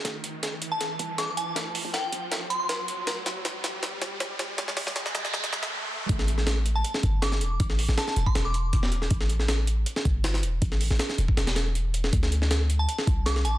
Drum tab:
HH |x-x-x-x-x-x-x-x-|x-o-x-x-x-x-x-x-|x-x-x-x-x-x-x-x-|x-o-x-x--x------|
SD |o---o---o---o---|o---o---o---o---|o-o-o-o-o-o-o-o-|oooooooooooo----|
BD |----------------|----------------|----------------|----------------|

HH |x-x-x-x-x-x-x-x-|x-o-x-x-x-x-x-x-|x-x-x-x-x-x-x-x-|x-o-x-x-xxx-x-x-|
SD |-o-oo----o--oo--|-o-ooo--o----o-o|-o-oo----o--oo--|-o-ooo--ooo----o|
BD |o---------o-----|o------o----o---|o---------o-----|o------o--------|

HH |x-x-x-x-x-x-x-x-|
SD |-o-oo----o--oo--|
BD |o---------o-----|